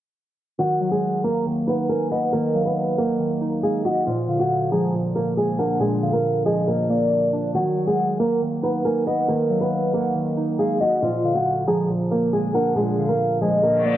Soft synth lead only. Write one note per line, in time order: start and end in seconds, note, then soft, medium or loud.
0.81 1.21 F#5 medium
1.24 1.45 A#5 medium
1.89 2.10 G#5 medium
2.11 2.32 F#5 medium
2.55 2.95 F5 medium
2.98 3.19 F#5 medium
3.63 3.84 F5 medium
3.85 4.06 D#5 medium
4.29 4.69 F5 medium
4.72 4.92 A#5 medium
5.37 5.58 G#5 medium
5.59 5.79 F#5 medium
6.02 6.43 F5 medium
6.46 6.87 D#5 medium
6.89 7.51 D5 medium
7.76 8.17 F#5 medium
8.20 8.40 A#5 medium
8.85 9.06 G#5 medium
9.07 9.28 F#5 medium
9.50 9.91 F5 medium
9.93 10.14 F#5 medium
10.59 10.80 F5 loud
10.80 11.01 D#5 medium
11.24 11.65 F5 medium
11.67 11.88 A#5 medium
12.33 12.53 G#5 medium
12.54 12.75 F#5 medium
12.98 13.39 F5 medium
13.41 13.82 D#5 medium
13.85 13.97 D5 medium